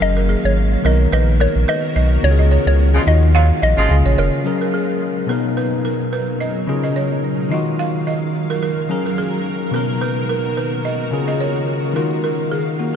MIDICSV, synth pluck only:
0, 0, Header, 1, 2, 480
1, 0, Start_track
1, 0, Key_signature, 6, "major"
1, 0, Tempo, 555556
1, 10, Time_signature, 4, 2, 24, 8
1, 11197, End_track
2, 0, Start_track
2, 0, Title_t, "Synth pluck"
2, 0, Program_c, 0, 84
2, 19, Note_on_c, 0, 75, 109
2, 219, Note_off_c, 0, 75, 0
2, 391, Note_on_c, 0, 73, 77
2, 479, Note_off_c, 0, 73, 0
2, 741, Note_on_c, 0, 75, 79
2, 849, Note_off_c, 0, 75, 0
2, 978, Note_on_c, 0, 75, 86
2, 1087, Note_off_c, 0, 75, 0
2, 1218, Note_on_c, 0, 73, 84
2, 1327, Note_off_c, 0, 73, 0
2, 1458, Note_on_c, 0, 75, 92
2, 1804, Note_off_c, 0, 75, 0
2, 1936, Note_on_c, 0, 73, 97
2, 2138, Note_off_c, 0, 73, 0
2, 2309, Note_on_c, 0, 73, 88
2, 2398, Note_off_c, 0, 73, 0
2, 2657, Note_on_c, 0, 75, 81
2, 2767, Note_off_c, 0, 75, 0
2, 2899, Note_on_c, 0, 77, 79
2, 3008, Note_off_c, 0, 77, 0
2, 3138, Note_on_c, 0, 75, 86
2, 3247, Note_off_c, 0, 75, 0
2, 3618, Note_on_c, 0, 70, 73
2, 3727, Note_off_c, 0, 70, 0
2, 11197, End_track
0, 0, End_of_file